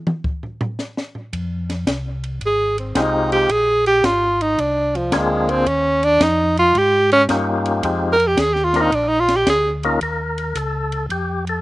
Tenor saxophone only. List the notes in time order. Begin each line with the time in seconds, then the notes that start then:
2.46 G#4
2.79 C4
2.98 D#4
3.32 G4
3.52 G#4
3.87 G4
4.05 F4
4.42 D#4
4.60 D4
4.96 F3
5.16 G#3
5.49 C4
5.68 C#4
6.04 D4
6.23 D#4
6.59 F4
6.78 G4
7.13 C#4
8.13 A#4
8.27 G4
8.40 G#4
8.53 G4
8.65 F4
8.81 D#4
8.95 D4
9.08 D#4
9.20 F4
9.36 G4
9.50 G#4